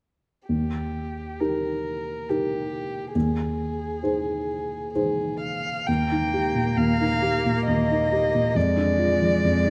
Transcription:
0, 0, Header, 1, 4, 480
1, 0, Start_track
1, 0, Key_signature, -3, "major"
1, 0, Tempo, 925926
1, 255, Time_signature, 3, 2, 24, 8
1, 733, Tempo, 872093
1, 2173, Tempo, 916031
1, 3613, Tempo, 886263
1, 5195, End_track
2, 0, Start_track
2, 0, Title_t, "Violin"
2, 0, Program_c, 0, 40
2, 251, Note_on_c, 0, 67, 29
2, 726, Note_on_c, 0, 70, 30
2, 734, Note_off_c, 0, 67, 0
2, 1215, Note_on_c, 0, 67, 35
2, 1223, Note_off_c, 0, 70, 0
2, 1683, Note_off_c, 0, 67, 0
2, 1687, Note_on_c, 0, 68, 38
2, 2632, Note_off_c, 0, 68, 0
2, 2647, Note_on_c, 0, 68, 36
2, 2887, Note_off_c, 0, 68, 0
2, 2890, Note_on_c, 0, 77, 48
2, 3136, Note_on_c, 0, 79, 41
2, 3144, Note_off_c, 0, 77, 0
2, 3610, Note_on_c, 0, 77, 47
2, 3618, Note_off_c, 0, 79, 0
2, 4091, Note_off_c, 0, 77, 0
2, 4095, Note_on_c, 0, 75, 46
2, 4578, Note_on_c, 0, 74, 52
2, 4586, Note_off_c, 0, 75, 0
2, 5195, Note_off_c, 0, 74, 0
2, 5195, End_track
3, 0, Start_track
3, 0, Title_t, "Grand piano"
3, 0, Program_c, 1, 0
3, 255, Note_on_c, 1, 39, 28
3, 355, Control_c, 1, 64, 127
3, 718, Note_off_c, 1, 39, 0
3, 729, Note_on_c, 1, 63, 24
3, 731, Note_on_c, 1, 67, 24
3, 733, Note_on_c, 1, 70, 25
3, 1193, Note_off_c, 1, 63, 0
3, 1194, Note_off_c, 1, 67, 0
3, 1195, Note_off_c, 1, 70, 0
3, 1217, Note_on_c, 1, 63, 27
3, 1219, Note_on_c, 1, 67, 27
3, 1222, Note_on_c, 1, 70, 29
3, 1665, Note_off_c, 1, 63, 0
3, 1666, Note_off_c, 1, 67, 0
3, 1668, Note_off_c, 1, 70, 0
3, 1690, Note_on_c, 1, 39, 36
3, 1696, Control_c, 1, 64, 0
3, 1792, Control_c, 1, 64, 127
3, 2159, Note_off_c, 1, 39, 0
3, 2172, Note_on_c, 1, 63, 27
3, 2173, Note_on_c, 1, 68, 28
3, 2173, Note_on_c, 1, 72, 31
3, 2630, Note_off_c, 1, 63, 0
3, 2631, Note_off_c, 1, 68, 0
3, 2631, Note_off_c, 1, 72, 0
3, 2657, Note_on_c, 1, 63, 29
3, 2657, Note_on_c, 1, 72, 29
3, 2658, Note_on_c, 1, 68, 29
3, 3122, Note_off_c, 1, 63, 0
3, 3122, Note_off_c, 1, 72, 0
3, 3123, Note_off_c, 1, 68, 0
3, 3144, Note_on_c, 1, 39, 31
3, 3150, Control_c, 1, 64, 0
3, 3231, Control_c, 1, 64, 127
3, 3265, Note_on_c, 1, 63, 25
3, 3382, Note_on_c, 1, 67, 23
3, 3451, Note_off_c, 1, 63, 0
3, 3493, Note_on_c, 1, 46, 24
3, 3568, Note_off_c, 1, 67, 0
3, 3601, Note_off_c, 1, 39, 0
3, 3609, Note_on_c, 1, 39, 29
3, 3685, Note_off_c, 1, 46, 0
3, 3737, Note_on_c, 1, 63, 25
3, 3854, Note_on_c, 1, 67, 24
3, 3930, Note_off_c, 1, 63, 0
3, 3982, Note_on_c, 1, 46, 25
3, 4049, Note_off_c, 1, 67, 0
3, 4093, Note_off_c, 1, 39, 0
3, 4101, Note_on_c, 1, 39, 30
3, 4173, Note_off_c, 1, 46, 0
3, 4225, Note_on_c, 1, 63, 27
3, 4342, Note_on_c, 1, 67, 23
3, 4412, Note_off_c, 1, 63, 0
3, 4462, Note_on_c, 1, 46, 26
3, 4529, Note_off_c, 1, 67, 0
3, 4562, Note_off_c, 1, 39, 0
3, 4572, Note_on_c, 1, 41, 30
3, 4578, Note_off_c, 1, 46, 0
3, 4584, Control_c, 1, 64, 0
3, 4675, Control_c, 1, 64, 127
3, 4690, Note_on_c, 1, 62, 25
3, 4809, Note_on_c, 1, 65, 27
3, 4883, Note_off_c, 1, 62, 0
3, 4931, Note_on_c, 1, 53, 24
3, 5002, Note_off_c, 1, 65, 0
3, 5049, Note_off_c, 1, 41, 0
3, 5057, Note_on_c, 1, 41, 28
3, 5124, Note_off_c, 1, 53, 0
3, 5195, Note_off_c, 1, 41, 0
3, 5195, End_track
4, 0, Start_track
4, 0, Title_t, "Cello"
4, 0, Program_c, 2, 42
4, 3147, Note_on_c, 2, 58, 33
4, 4569, Note_on_c, 2, 56, 36
4, 4577, Note_off_c, 2, 58, 0
4, 5195, Note_off_c, 2, 56, 0
4, 5195, End_track
0, 0, End_of_file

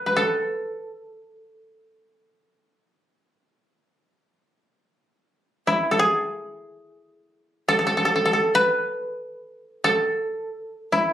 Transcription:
0, 0, Header, 1, 2, 480
1, 0, Start_track
1, 0, Tempo, 500000
1, 10686, End_track
2, 0, Start_track
2, 0, Title_t, "Koto"
2, 0, Program_c, 0, 107
2, 0, Note_on_c, 0, 69, 55
2, 60, Note_on_c, 0, 71, 46
2, 154, Note_off_c, 0, 69, 0
2, 158, Note_on_c, 0, 69, 63
2, 1765, Note_off_c, 0, 71, 0
2, 2648, Note_off_c, 0, 69, 0
2, 5446, Note_on_c, 0, 64, 64
2, 5676, Note_on_c, 0, 69, 61
2, 5754, Note_on_c, 0, 68, 85
2, 5812, Note_off_c, 0, 69, 0
2, 7377, Note_on_c, 0, 69, 84
2, 7435, Note_off_c, 0, 68, 0
2, 7473, Note_off_c, 0, 69, 0
2, 7476, Note_on_c, 0, 69, 57
2, 7548, Note_off_c, 0, 69, 0
2, 7551, Note_on_c, 0, 69, 70
2, 7619, Note_off_c, 0, 64, 0
2, 7648, Note_off_c, 0, 69, 0
2, 7652, Note_on_c, 0, 69, 62
2, 7725, Note_off_c, 0, 69, 0
2, 7729, Note_on_c, 0, 69, 72
2, 7826, Note_off_c, 0, 69, 0
2, 7829, Note_on_c, 0, 69, 54
2, 7920, Note_off_c, 0, 69, 0
2, 7924, Note_on_c, 0, 69, 63
2, 7995, Note_off_c, 0, 69, 0
2, 7999, Note_on_c, 0, 69, 62
2, 8207, Note_on_c, 0, 71, 91
2, 9445, Note_off_c, 0, 69, 0
2, 9448, Note_on_c, 0, 69, 88
2, 9912, Note_off_c, 0, 71, 0
2, 10487, Note_on_c, 0, 64, 59
2, 10686, Note_off_c, 0, 64, 0
2, 10686, Note_off_c, 0, 69, 0
2, 10686, End_track
0, 0, End_of_file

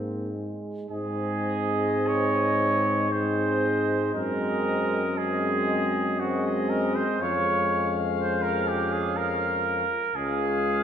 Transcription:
0, 0, Header, 1, 6, 480
1, 0, Start_track
1, 0, Key_signature, -4, "major"
1, 0, Tempo, 1162791
1, 375, Time_signature, 3, 2, 24, 8
1, 854, Tempo, 1041667
1, 1814, Tempo, 1029160
1, 2774, Tempo, 985222
1, 4694, Tempo, 1056338
1, 5004, End_track
2, 0, Start_track
2, 0, Title_t, "Trumpet section"
2, 0, Program_c, 0, 61
2, 373, Note_on_c, 0, 75, 63
2, 1314, Note_off_c, 0, 75, 0
2, 1333, Note_on_c, 0, 75, 60
2, 1804, Note_off_c, 0, 75, 0
2, 1808, Note_on_c, 0, 75, 63
2, 2283, Note_off_c, 0, 75, 0
2, 2290, Note_on_c, 0, 75, 60
2, 2760, Note_off_c, 0, 75, 0
2, 2775, Note_on_c, 0, 75, 61
2, 3250, Note_off_c, 0, 75, 0
2, 3262, Note_on_c, 0, 77, 68
2, 4610, Note_off_c, 0, 77, 0
2, 4693, Note_on_c, 0, 77, 64
2, 5004, Note_off_c, 0, 77, 0
2, 5004, End_track
3, 0, Start_track
3, 0, Title_t, "Flugelhorn"
3, 0, Program_c, 1, 56
3, 0, Note_on_c, 1, 60, 47
3, 234, Note_off_c, 1, 60, 0
3, 375, Note_on_c, 1, 68, 88
3, 854, Note_on_c, 1, 73, 88
3, 861, Note_off_c, 1, 68, 0
3, 1338, Note_on_c, 1, 72, 74
3, 1344, Note_off_c, 1, 73, 0
3, 1810, Note_off_c, 1, 72, 0
3, 1813, Note_on_c, 1, 70, 90
3, 2290, Note_on_c, 1, 68, 87
3, 2297, Note_off_c, 1, 70, 0
3, 2768, Note_on_c, 1, 66, 70
3, 2775, Note_off_c, 1, 68, 0
3, 2894, Note_off_c, 1, 66, 0
3, 2897, Note_on_c, 1, 68, 71
3, 3011, Note_on_c, 1, 70, 80
3, 3019, Note_off_c, 1, 68, 0
3, 3135, Note_on_c, 1, 72, 80
3, 3142, Note_off_c, 1, 70, 0
3, 3264, Note_on_c, 1, 73, 94
3, 3272, Note_off_c, 1, 72, 0
3, 3611, Note_off_c, 1, 73, 0
3, 3737, Note_on_c, 1, 72, 75
3, 3854, Note_on_c, 1, 70, 83
3, 3861, Note_off_c, 1, 72, 0
3, 3977, Note_on_c, 1, 67, 76
3, 3984, Note_off_c, 1, 70, 0
3, 4096, Note_on_c, 1, 68, 80
3, 4103, Note_off_c, 1, 67, 0
3, 4213, Note_on_c, 1, 70, 84
3, 4220, Note_off_c, 1, 68, 0
3, 4695, Note_on_c, 1, 68, 96
3, 4702, Note_off_c, 1, 70, 0
3, 5004, Note_off_c, 1, 68, 0
3, 5004, End_track
4, 0, Start_track
4, 0, Title_t, "Trombone section"
4, 0, Program_c, 2, 61
4, 0, Note_on_c, 2, 60, 43
4, 230, Note_off_c, 2, 60, 0
4, 376, Note_on_c, 2, 60, 63
4, 1315, Note_off_c, 2, 60, 0
4, 1332, Note_on_c, 2, 60, 63
4, 1801, Note_off_c, 2, 60, 0
4, 1807, Note_on_c, 2, 60, 59
4, 2282, Note_off_c, 2, 60, 0
4, 2294, Note_on_c, 2, 60, 64
4, 2763, Note_off_c, 2, 60, 0
4, 2769, Note_on_c, 2, 60, 65
4, 3247, Note_off_c, 2, 60, 0
4, 3255, Note_on_c, 2, 61, 70
4, 4614, Note_off_c, 2, 61, 0
4, 4697, Note_on_c, 2, 61, 64
4, 5004, Note_off_c, 2, 61, 0
4, 5004, End_track
5, 0, Start_track
5, 0, Title_t, "Euphonium"
5, 0, Program_c, 3, 58
5, 0, Note_on_c, 3, 58, 49
5, 129, Note_off_c, 3, 58, 0
5, 132, Note_on_c, 3, 56, 41
5, 368, Note_off_c, 3, 56, 0
5, 371, Note_on_c, 3, 56, 69
5, 1313, Note_off_c, 3, 56, 0
5, 1333, Note_on_c, 3, 56, 67
5, 1804, Note_off_c, 3, 56, 0
5, 1812, Note_on_c, 3, 56, 63
5, 2212, Note_off_c, 3, 56, 0
5, 2291, Note_on_c, 3, 56, 62
5, 2761, Note_off_c, 3, 56, 0
5, 2768, Note_on_c, 3, 56, 71
5, 3247, Note_off_c, 3, 56, 0
5, 3260, Note_on_c, 3, 56, 69
5, 4543, Note_off_c, 3, 56, 0
5, 4695, Note_on_c, 3, 56, 71
5, 5004, Note_off_c, 3, 56, 0
5, 5004, End_track
6, 0, Start_track
6, 0, Title_t, "Tuba"
6, 0, Program_c, 4, 58
6, 0, Note_on_c, 4, 44, 46
6, 227, Note_off_c, 4, 44, 0
6, 374, Note_on_c, 4, 44, 64
6, 1794, Note_off_c, 4, 44, 0
6, 1811, Note_on_c, 4, 42, 62
6, 3175, Note_off_c, 4, 42, 0
6, 3258, Note_on_c, 4, 41, 64
6, 4541, Note_off_c, 4, 41, 0
6, 4694, Note_on_c, 4, 37, 62
6, 5004, Note_off_c, 4, 37, 0
6, 5004, End_track
0, 0, End_of_file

